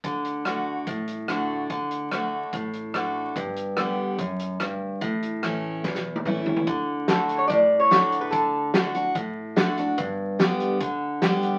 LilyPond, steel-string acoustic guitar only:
\new Staff \with { instrumentName = "Steel-string acoustic guitar" } { \time 4/4 \key d \major \tempo 4 = 145 << { r4 <d a d' fis'>4 r4 <d a d' fis'>4 | r4 <d a d' fis'>4 r4 <d a d' fis'>4 | r4 <d g b g'>4 r2 | r4 <e a cis' e'>4 r4 <e a cis' e'>4 |
r4 <d a d' fis'>4 r4 <d a d' fis'>4 | r4 <d a d' fis'>8 <d' fis'>8 r4 <d a d' fis'>8 <d' fis'>8 | r4 <d g b g'>4 r4 <d g b g'>4 | } \\ { d2 a,2 | d2 a,2 | g,2 fis,4 g,4 | a,2 e,2 |
d2 a,2 | d2 a,2 | g,2 d2 | } >> }